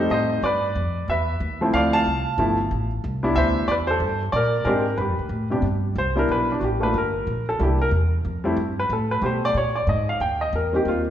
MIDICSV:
0, 0, Header, 1, 3, 480
1, 0, Start_track
1, 0, Tempo, 325733
1, 640, Time_signature, 4, 2, 24, 8
1, 16360, End_track
2, 0, Start_track
2, 0, Title_t, "Grand piano"
2, 0, Program_c, 0, 0
2, 0, Note_on_c, 0, 55, 72
2, 0, Note_on_c, 0, 57, 58
2, 0, Note_on_c, 0, 60, 65
2, 0, Note_on_c, 0, 63, 81
2, 0, Note_on_c, 0, 72, 103
2, 165, Note_on_c, 0, 75, 87
2, 176, Note_off_c, 0, 72, 0
2, 198, Note_on_c, 0, 72, 72
2, 595, Note_off_c, 0, 55, 0
2, 597, Note_off_c, 0, 57, 0
2, 600, Note_off_c, 0, 60, 0
2, 606, Note_off_c, 0, 63, 0
2, 608, Note_off_c, 0, 75, 0
2, 626, Note_off_c, 0, 72, 0
2, 642, Note_on_c, 0, 74, 98
2, 672, Note_on_c, 0, 71, 81
2, 1555, Note_off_c, 0, 71, 0
2, 1615, Note_on_c, 0, 76, 89
2, 1628, Note_off_c, 0, 74, 0
2, 1638, Note_on_c, 0, 71, 66
2, 2373, Note_on_c, 0, 53, 64
2, 2384, Note_on_c, 0, 57, 64
2, 2386, Note_on_c, 0, 60, 68
2, 2395, Note_on_c, 0, 64, 68
2, 2506, Note_off_c, 0, 76, 0
2, 2517, Note_off_c, 0, 71, 0
2, 2558, Note_on_c, 0, 77, 101
2, 2580, Note_on_c, 0, 74, 82
2, 2844, Note_off_c, 0, 74, 0
2, 2849, Note_on_c, 0, 81, 117
2, 2850, Note_off_c, 0, 77, 0
2, 2872, Note_on_c, 0, 77, 77
2, 2999, Note_off_c, 0, 53, 0
2, 3005, Note_off_c, 0, 57, 0
2, 3005, Note_off_c, 0, 60, 0
2, 3010, Note_off_c, 0, 64, 0
2, 3508, Note_on_c, 0, 53, 66
2, 3514, Note_on_c, 0, 57, 58
2, 3516, Note_on_c, 0, 59, 55
2, 3525, Note_on_c, 0, 64, 69
2, 3777, Note_off_c, 0, 53, 0
2, 3781, Note_off_c, 0, 57, 0
2, 3782, Note_off_c, 0, 59, 0
2, 3786, Note_off_c, 0, 64, 0
2, 4230, Note_off_c, 0, 81, 0
2, 4241, Note_off_c, 0, 77, 0
2, 4759, Note_on_c, 0, 55, 66
2, 4759, Note_on_c, 0, 59, 67
2, 4772, Note_on_c, 0, 62, 66
2, 4777, Note_on_c, 0, 64, 82
2, 4945, Note_on_c, 0, 76, 104
2, 4974, Note_on_c, 0, 72, 82
2, 5391, Note_off_c, 0, 55, 0
2, 5391, Note_off_c, 0, 59, 0
2, 5397, Note_off_c, 0, 62, 0
2, 5400, Note_off_c, 0, 64, 0
2, 5410, Note_off_c, 0, 72, 0
2, 5420, Note_on_c, 0, 74, 102
2, 5443, Note_off_c, 0, 76, 0
2, 5474, Note_on_c, 0, 71, 77
2, 5494, Note_off_c, 0, 74, 0
2, 5547, Note_off_c, 0, 71, 0
2, 5705, Note_on_c, 0, 72, 92
2, 5754, Note_on_c, 0, 69, 76
2, 6162, Note_off_c, 0, 72, 0
2, 6189, Note_off_c, 0, 69, 0
2, 6371, Note_on_c, 0, 74, 100
2, 6426, Note_on_c, 0, 70, 77
2, 6826, Note_off_c, 0, 70, 0
2, 6848, Note_on_c, 0, 70, 82
2, 6865, Note_on_c, 0, 56, 72
2, 6876, Note_off_c, 0, 74, 0
2, 6876, Note_on_c, 0, 60, 61
2, 6880, Note_on_c, 0, 62, 61
2, 6891, Note_on_c, 0, 67, 77
2, 7135, Note_off_c, 0, 56, 0
2, 7140, Note_off_c, 0, 60, 0
2, 7142, Note_off_c, 0, 62, 0
2, 7148, Note_off_c, 0, 67, 0
2, 7305, Note_off_c, 0, 70, 0
2, 7331, Note_on_c, 0, 71, 71
2, 7383, Note_on_c, 0, 67, 64
2, 8063, Note_off_c, 0, 71, 0
2, 8090, Note_off_c, 0, 67, 0
2, 8110, Note_on_c, 0, 48, 63
2, 8118, Note_on_c, 0, 55, 54
2, 8123, Note_on_c, 0, 59, 54
2, 8130, Note_on_c, 0, 67, 72
2, 8136, Note_on_c, 0, 62, 60
2, 8284, Note_off_c, 0, 48, 0
2, 8288, Note_off_c, 0, 55, 0
2, 8291, Note_off_c, 0, 59, 0
2, 8294, Note_off_c, 0, 67, 0
2, 8297, Note_off_c, 0, 62, 0
2, 8818, Note_on_c, 0, 72, 87
2, 9069, Note_on_c, 0, 55, 62
2, 9074, Note_on_c, 0, 59, 60
2, 9077, Note_on_c, 0, 62, 60
2, 9088, Note_on_c, 0, 64, 71
2, 9093, Note_off_c, 0, 72, 0
2, 9118, Note_on_c, 0, 70, 79
2, 9282, Note_off_c, 0, 70, 0
2, 9307, Note_on_c, 0, 71, 82
2, 9578, Note_off_c, 0, 71, 0
2, 9582, Note_off_c, 0, 62, 0
2, 9604, Note_on_c, 0, 62, 72
2, 9706, Note_off_c, 0, 55, 0
2, 9709, Note_off_c, 0, 59, 0
2, 9716, Note_off_c, 0, 64, 0
2, 9722, Note_on_c, 0, 66, 56
2, 9757, Note_off_c, 0, 66, 0
2, 9765, Note_off_c, 0, 62, 0
2, 9786, Note_on_c, 0, 67, 72
2, 10023, Note_on_c, 0, 58, 50
2, 10026, Note_on_c, 0, 57, 62
2, 10034, Note_on_c, 0, 62, 56
2, 10043, Note_on_c, 0, 65, 64
2, 10058, Note_off_c, 0, 67, 0
2, 10067, Note_on_c, 0, 71, 88
2, 10202, Note_off_c, 0, 58, 0
2, 10203, Note_off_c, 0, 57, 0
2, 10207, Note_off_c, 0, 62, 0
2, 10212, Note_off_c, 0, 65, 0
2, 10237, Note_off_c, 0, 71, 0
2, 10283, Note_on_c, 0, 70, 74
2, 10983, Note_off_c, 0, 70, 0
2, 11035, Note_on_c, 0, 69, 78
2, 11179, Note_on_c, 0, 55, 48
2, 11191, Note_on_c, 0, 58, 42
2, 11193, Note_on_c, 0, 62, 50
2, 11202, Note_off_c, 0, 69, 0
2, 11203, Note_on_c, 0, 64, 55
2, 11241, Note_on_c, 0, 67, 69
2, 11454, Note_off_c, 0, 55, 0
2, 11459, Note_off_c, 0, 58, 0
2, 11461, Note_off_c, 0, 62, 0
2, 11466, Note_off_c, 0, 64, 0
2, 11506, Note_off_c, 0, 67, 0
2, 11515, Note_on_c, 0, 70, 90
2, 11618, Note_off_c, 0, 70, 0
2, 12435, Note_on_c, 0, 55, 71
2, 12447, Note_on_c, 0, 57, 64
2, 12453, Note_on_c, 0, 60, 62
2, 12457, Note_on_c, 0, 64, 72
2, 12609, Note_off_c, 0, 55, 0
2, 12615, Note_off_c, 0, 57, 0
2, 12618, Note_off_c, 0, 60, 0
2, 12620, Note_off_c, 0, 64, 0
2, 12960, Note_on_c, 0, 71, 85
2, 13125, Note_off_c, 0, 71, 0
2, 13156, Note_on_c, 0, 69, 67
2, 13425, Note_off_c, 0, 69, 0
2, 13429, Note_on_c, 0, 71, 86
2, 13581, Note_on_c, 0, 55, 52
2, 13583, Note_on_c, 0, 57, 48
2, 13592, Note_on_c, 0, 72, 53
2, 13600, Note_off_c, 0, 71, 0
2, 13601, Note_on_c, 0, 67, 69
2, 13618, Note_off_c, 0, 72, 0
2, 13640, Note_on_c, 0, 72, 75
2, 13907, Note_off_c, 0, 72, 0
2, 13926, Note_on_c, 0, 74, 99
2, 14070, Note_off_c, 0, 55, 0
2, 14071, Note_off_c, 0, 57, 0
2, 14080, Note_off_c, 0, 67, 0
2, 14089, Note_off_c, 0, 74, 0
2, 14110, Note_on_c, 0, 73, 80
2, 14375, Note_on_c, 0, 74, 86
2, 14383, Note_off_c, 0, 73, 0
2, 14554, Note_off_c, 0, 74, 0
2, 14575, Note_on_c, 0, 75, 77
2, 14855, Note_off_c, 0, 75, 0
2, 14871, Note_on_c, 0, 77, 83
2, 15042, Note_off_c, 0, 77, 0
2, 15050, Note_on_c, 0, 79, 83
2, 15333, Note_off_c, 0, 79, 0
2, 15343, Note_on_c, 0, 75, 80
2, 15518, Note_off_c, 0, 75, 0
2, 15554, Note_on_c, 0, 70, 66
2, 15806, Note_on_c, 0, 55, 51
2, 15813, Note_on_c, 0, 58, 51
2, 15819, Note_on_c, 0, 60, 44
2, 15826, Note_off_c, 0, 70, 0
2, 15832, Note_on_c, 0, 63, 59
2, 15854, Note_on_c, 0, 67, 76
2, 16015, Note_off_c, 0, 67, 0
2, 16035, Note_on_c, 0, 65, 78
2, 16203, Note_off_c, 0, 65, 0
2, 16360, Note_off_c, 0, 55, 0
2, 16360, Note_off_c, 0, 58, 0
2, 16360, Note_off_c, 0, 60, 0
2, 16360, Note_off_c, 0, 63, 0
2, 16360, End_track
3, 0, Start_track
3, 0, Title_t, "Upright bass"
3, 0, Program_c, 1, 32
3, 147, Note_on_c, 1, 45, 85
3, 618, Note_off_c, 1, 45, 0
3, 626, Note_on_c, 1, 43, 79
3, 1097, Note_off_c, 1, 43, 0
3, 1111, Note_on_c, 1, 41, 86
3, 1579, Note_off_c, 1, 41, 0
3, 1589, Note_on_c, 1, 40, 82
3, 2058, Note_off_c, 1, 40, 0
3, 2067, Note_on_c, 1, 39, 87
3, 2537, Note_off_c, 1, 39, 0
3, 2555, Note_on_c, 1, 38, 85
3, 3020, Note_off_c, 1, 38, 0
3, 3029, Note_on_c, 1, 36, 82
3, 3497, Note_off_c, 1, 36, 0
3, 3503, Note_on_c, 1, 31, 90
3, 3974, Note_off_c, 1, 31, 0
3, 3992, Note_on_c, 1, 33, 84
3, 4458, Note_off_c, 1, 33, 0
3, 4477, Note_on_c, 1, 36, 88
3, 4941, Note_off_c, 1, 36, 0
3, 4947, Note_on_c, 1, 38, 88
3, 5408, Note_off_c, 1, 38, 0
3, 5417, Note_on_c, 1, 40, 80
3, 5884, Note_off_c, 1, 40, 0
3, 5893, Note_on_c, 1, 43, 84
3, 6368, Note_off_c, 1, 43, 0
3, 6378, Note_on_c, 1, 46, 92
3, 6841, Note_off_c, 1, 46, 0
3, 6850, Note_on_c, 1, 44, 87
3, 7326, Note_off_c, 1, 44, 0
3, 7333, Note_on_c, 1, 43, 82
3, 7493, Note_off_c, 1, 43, 0
3, 7493, Note_on_c, 1, 41, 53
3, 7635, Note_off_c, 1, 41, 0
3, 7644, Note_on_c, 1, 38, 62
3, 7789, Note_off_c, 1, 38, 0
3, 7798, Note_on_c, 1, 45, 80
3, 8272, Note_off_c, 1, 45, 0
3, 8281, Note_on_c, 1, 43, 82
3, 8762, Note_off_c, 1, 43, 0
3, 8775, Note_on_c, 1, 36, 86
3, 9249, Note_off_c, 1, 36, 0
3, 9261, Note_on_c, 1, 35, 79
3, 9733, Note_off_c, 1, 35, 0
3, 9740, Note_on_c, 1, 33, 82
3, 10212, Note_off_c, 1, 33, 0
3, 10224, Note_on_c, 1, 31, 81
3, 10695, Note_off_c, 1, 31, 0
3, 10710, Note_on_c, 1, 34, 84
3, 11178, Note_off_c, 1, 34, 0
3, 11191, Note_on_c, 1, 36, 89
3, 11650, Note_off_c, 1, 36, 0
3, 11658, Note_on_c, 1, 40, 84
3, 12133, Note_off_c, 1, 40, 0
3, 12152, Note_on_c, 1, 41, 79
3, 12613, Note_off_c, 1, 41, 0
3, 12621, Note_on_c, 1, 43, 87
3, 13095, Note_off_c, 1, 43, 0
3, 13108, Note_on_c, 1, 45, 91
3, 13570, Note_off_c, 1, 45, 0
3, 13579, Note_on_c, 1, 47, 87
3, 14054, Note_off_c, 1, 47, 0
3, 14062, Note_on_c, 1, 46, 81
3, 14536, Note_off_c, 1, 46, 0
3, 14544, Note_on_c, 1, 44, 89
3, 15017, Note_off_c, 1, 44, 0
3, 15035, Note_on_c, 1, 39, 82
3, 15504, Note_off_c, 1, 39, 0
3, 15513, Note_on_c, 1, 40, 87
3, 15983, Note_off_c, 1, 40, 0
3, 15991, Note_on_c, 1, 39, 80
3, 16360, Note_off_c, 1, 39, 0
3, 16360, End_track
0, 0, End_of_file